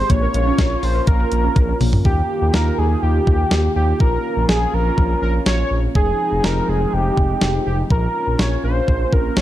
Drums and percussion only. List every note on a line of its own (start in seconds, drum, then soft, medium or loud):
0.10 kick loud
0.10 closed hi-hat medium
0.34 closed hi-hat medium
0.58 kick loud
0.58 snare loud
0.58 closed hi-hat medium
0.83 open hi-hat medium
1.07 kick loud
1.07 closed hi-hat medium
1.32 closed hi-hat medium
1.56 kick loud
1.56 closed hi-hat medium
1.56 high tom medium
1.81 mid tom loud
1.81 open hi-hat medium
1.93 floor tom loud
2.05 kick loud
2.54 snare loud
3.27 kick medium
3.51 snare loud
4.00 kick medium
4.49 snare loud
4.98 kick medium
5.46 snare loud
5.95 kick loud
6.44 snare loud
7.17 kick medium
7.41 snare loud
7.90 kick loud
8.39 snare loud
8.88 kick medium
9.13 kick medium
9.37 snare loud